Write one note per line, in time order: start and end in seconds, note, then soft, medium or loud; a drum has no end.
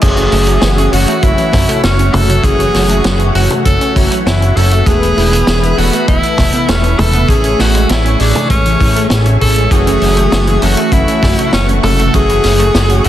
0.01 0.29 F#1 medium
0.01 0.89 E3 loud
0.01 0.89 A3 medium
0.01 0.89 C#4 loud
0.01 0.89 F#4 loud
0.01 4.83 F#4 medium
0.01 0.94 G#4 loud
0.01 4.83 C#5 medium
0.01 13.09 E5 medium
0.01 4.83 F#5 medium
0.01 kick loud
0.01 closed hi-hat medium
0.01 crash loud
0.17 0.25 C#4 medium
0.17 closed hi-hat soft
0.32 0.59 F#1 medium
0.32 0.47 A3 medium
0.32 open hi-hat medium
0.47 0.60 F#3 medium
0.47 closed hi-hat medium
0.62 0.89 F#1 loud
0.62 0.77 E3 medium
0.62 snare loud
0.62 closed hi-hat medium
0.78 0.91 C#4 medium
0.78 closed hi-hat soft
0.93 1.06 F#1 medium
0.93 2.41 E3 loud
0.93 2.41 A3 medium
0.93 2.41 C#4 medium
0.93 2.41 F#4 loud
0.93 1.25 F#4 medium
0.93 open hi-hat medium
1.08 1.21 A3 medium
1.08 closed hi-hat medium
1.23 1.36 F#1 loud
1.23 1.31 F#3 medium
1.23 1.83 E4 loud
1.23 kick loud
1.23 closed hi-hat medium
1.38 1.51 E3 medium
1.38 closed hi-hat soft
1.52 1.67 F#1 medium
1.52 1.66 C#4 medium
1.52 kick loud
1.52 snare soft
1.52 open hi-hat medium
1.52 mid tom medium
1.69 1.83 A3 loud
1.69 closed hi-hat medium
1.83 2.10 F#1 loud
1.83 2.16 C#4 medium
1.83 snare loud
1.83 closed hi-hat medium
1.99 2.07 C#4 medium
1.99 closed hi-hat soft
2.14 2.40 F#1 medium
2.14 2.28 A3 medium
2.14 2.46 A4 medium
2.14 open hi-hat medium
2.14 mid tom medium
2.29 2.42 F#3 medium
2.29 closed hi-hat medium
2.44 2.70 F#1 loud
2.44 3.31 E3 loud
2.44 2.59 E3 medium
2.44 3.31 A3 medium
2.44 3.31 C#4 medium
2.44 3.31 F#4 loud
2.44 3.35 G#4 loud
2.44 kick loud
2.44 closed hi-hat medium
2.60 2.72 C#4 medium
2.60 closed hi-hat soft
2.74 3.01 F#1 medium
2.74 snare soft
2.74 open hi-hat medium
2.89 3.03 A3 medium
2.89 closed hi-hat medium
3.04 3.31 F#1 loud
3.04 3.13 F#3 medium
3.04 snare loud
3.04 closed hi-hat medium
3.19 3.33 E3 medium
3.19 closed hi-hat soft
3.35 3.48 F#1 medium
3.35 4.83 E3 medium
3.35 4.83 A3 medium
3.35 4.83 C#4 medium
3.35 3.48 C#4 medium
3.35 4.83 F#4 loud
3.35 3.49 F#4 medium
3.35 open hi-hat medium
3.50 3.65 A3 loud
3.50 closed hi-hat medium
3.50 mid tom medium
3.65 3.79 F#1 loud
3.65 3.97 A4 loud
3.65 kick loud
3.65 closed hi-hat medium
3.81 3.89 C#4 medium
3.81 closed hi-hat medium
3.96 4.09 F#1 medium
3.96 4.10 A3 medium
3.96 kick loud
3.96 open hi-hat medium
4.11 4.24 F#3 medium
4.11 closed hi-hat medium
4.26 4.53 F#1 loud
4.26 4.41 E3 medium
4.26 4.58 E4 medium
4.26 snare loud
4.26 closed hi-hat medium
4.41 4.54 C#4 medium
4.41 closed hi-hat soft
4.56 4.83 F#1 medium
4.56 4.88 A4 medium
4.56 open hi-hat medium
4.71 4.85 A3 medium
4.71 closed hi-hat medium
4.86 5.13 E1 loud
4.86 5.74 E3 loud
4.86 5.74 A3 medium
4.86 13.09 A3 medium
4.86 4.95 A3 medium
4.86 5.74 B3 medium
4.86 5.79 G#4 loud
4.86 5.74 B4 loud
4.86 7.27 B4 medium
4.86 7.27 B5 medium
4.86 kick loud
4.86 closed hi-hat medium
5.02 5.15 E3 medium
5.02 closed hi-hat soft
5.17 5.44 E1 medium
5.17 5.30 E4 medium
5.17 open hi-hat medium
5.32 5.47 B3 loud
5.32 closed hi-hat medium
5.47 5.74 E1 loud
5.47 snare loud
5.47 closed hi-hat medium
5.63 5.70 E4 medium
5.63 closed hi-hat soft
5.78 5.91 E1 medium
5.78 7.26 E3 medium
5.78 7.26 A3 medium
5.78 7.25 B3 medium
5.78 5.92 B3 medium
5.78 6.08 F#4 medium
5.78 7.26 A4 loud
5.78 open hi-hat medium
5.93 6.06 A3 medium
5.93 closed hi-hat medium
6.08 6.21 E1 loud
6.08 6.22 E3 medium
6.08 6.71 E4 loud
6.08 kick loud
6.08 closed hi-hat medium
6.23 6.36 E4 medium
6.23 closed hi-hat soft
6.38 6.51 E1 loud
6.38 kick loud
6.38 snare soft
6.38 open hi-hat medium
6.38 mid tom medium
6.53 6.66 B3 medium
6.53 closed hi-hat medium
6.68 6.95 E1 loud
6.68 6.76 A3 medium
6.68 7.01 C#4 medium
6.68 snare loud
6.68 closed hi-hat medium
6.84 6.97 E3 medium
6.84 closed hi-hat soft
6.99 7.25 E1 medium
6.99 7.12 E4 medium
6.99 7.31 A4 loud
6.99 open hi-hat medium
6.99 mid tom medium
7.13 7.28 B3 loud
7.13 closed hi-hat medium
7.29 7.55 A1 loud
7.29 8.16 E3 loud
7.29 8.16 A3 medium
7.29 8.16 C#4 medium
7.29 8.16 G#4 loud
7.29 7.62 G#4 loud
7.29 9.69 G#5 medium
7.29 9.69 C#6 medium
7.29 kick loud
7.29 closed hi-hat medium
7.44 7.52 C#4 medium
7.44 closed hi-hat soft
7.59 7.86 A1 medium
7.59 7.74 A3 medium
7.59 7.91 F#4 medium
7.59 snare soft
7.59 open hi-hat medium
7.75 7.88 G#3 medium
7.75 closed hi-hat medium
7.89 8.16 A1 loud
7.89 8.04 E3 medium
7.89 8.22 E4 medium
7.89 snare loud
7.89 closed hi-hat medium
8.05 8.18 C#4 medium
8.05 closed hi-hat soft
8.20 8.33 A1 medium
8.20 9.68 E3 medium
8.20 9.68 A3 medium
8.20 8.50 D4 medium
8.20 9.68 G#4 loud
8.20 9.68 C#5 medium
8.20 open hi-hat medium
8.35 8.48 A3 medium
8.35 closed hi-hat medium
8.35 mid tom medium
8.50 8.77 A1 medium
8.50 8.58 G#3 medium
8.50 9.10 C#4 loud
8.50 kick loud
8.50 closed hi-hat medium
8.65 8.78 E3 medium
8.65 closed hi-hat soft
8.81 9.07 A2 loud
8.81 8.94 C#4 medium
8.81 kick loud
8.81 open hi-hat medium
8.96 9.10 A3 loud
8.96 closed hi-hat medium
9.10 9.37 A1 loud
9.10 snare loud
9.10 closed hi-hat medium
9.26 9.34 C#4 medium
9.26 closed hi-hat soft
9.41 9.68 A1 medium
9.41 9.56 A3 medium
9.41 9.70 A4 loud
9.41 kick medium
9.41 open hi-hat medium
9.56 9.69 G#3 medium
9.56 closed hi-hat medium
9.71 9.98 F#1 loud
9.71 9.86 E3 medium
9.71 10.59 E3 loud
9.71 10.59 A3 medium
9.71 10.59 C#4 medium
9.71 10.59 F#4 loud
9.71 10.64 G#4 loud
9.71 13.09 F#5 medium
9.71 13.09 C#6 medium
9.71 kick loud
9.71 closed hi-hat medium
9.87 10.00 C#4 medium
9.87 closed hi-hat soft
10.02 10.28 F#1 medium
10.02 open hi-hat medium
10.17 10.30 A3 medium
10.17 closed hi-hat medium
10.32 10.59 F#1 loud
10.32 10.40 F#3 medium
10.32 snare loud
10.32 closed hi-hat medium
10.47 10.60 E3 medium
10.47 closed hi-hat soft
10.62 10.76 F#1 medium
10.62 12.10 E3 loud
10.62 12.10 A3 medium
10.62 10.75 C#4 medium
10.62 12.10 C#4 medium
10.62 12.10 F#4 loud
10.62 10.95 F#4 medium
10.62 open hi-hat medium
10.77 10.92 A3 medium
10.77 closed hi-hat medium
10.92 11.06 F#1 loud
10.92 11.53 E4 loud
10.92 kick loud
10.92 closed hi-hat medium
11.08 11.16 C#4 medium
11.08 closed hi-hat soft
11.23 11.36 F#1 loud
11.23 11.37 A3 medium
11.23 kick loud
11.23 snare soft
11.23 open hi-hat medium
11.23 mid tom medium
11.38 11.51 F#3 medium
11.38 closed hi-hat medium
11.53 11.80 F#1 loud
11.53 11.68 E3 medium
11.53 11.67 C#4 medium
11.53 snare loud
11.53 closed hi-hat medium
11.68 11.81 C#4 medium
11.68 closed hi-hat soft
11.83 12.10 F#1 medium
11.83 12.16 A4 loud
11.83 open hi-hat medium
11.83 mid tom medium
11.99 12.12 A3 medium
11.99 closed hi-hat medium
12.14 12.40 F#1 loud
12.14 13.01 E3 loud
12.14 12.22 F#3 medium
12.14 13.01 A3 medium
12.14 13.01 C#4 medium
12.14 13.01 F#4 loud
12.14 13.07 G#4 loud
12.14 kick loud
12.14 closed hi-hat medium
12.29 12.42 E3 medium
12.29 closed hi-hat soft
12.44 12.71 F#1 medium
12.44 12.57 C#4 medium
12.44 snare soft
12.44 open hi-hat medium
12.59 12.74 A3 loud
12.59 closed hi-hat medium
12.75 13.01 F#1 loud
12.75 snare loud
12.75 closed hi-hat medium
12.89 12.97 C#4 medium
12.89 closed hi-hat soft
13.04 13.09 F#1 medium
13.04 13.09 E3 medium
13.04 13.09 A3 medium
13.04 13.09 C#4 medium
13.04 13.09 F#4 loud
13.04 open hi-hat medium